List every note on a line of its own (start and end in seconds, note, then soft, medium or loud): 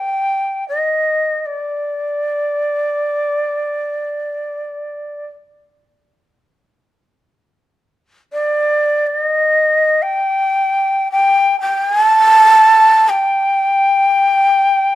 0.00 0.81 D3 soft
0.00 0.34 A3 soft
0.00 0.65 D4 soft
0.00 0.96 D#4 soft
0.00 1.27 A4 soft
0.00 0.67 G5 medium
0.69 1.47 D#5 medium
1.46 5.26 D5 medium
8.33 9.06 D5 medium
9.06 9.18 D5 medium
9.18 10.04 D#5 medium
10.02 11.11 G5 medium
11.12 11.59 G5 medium
11.60 11.87 G5 medium
11.87 12.03 G#5 medium
12.03 13.11 A5 medium
13.09 14.95 G5 medium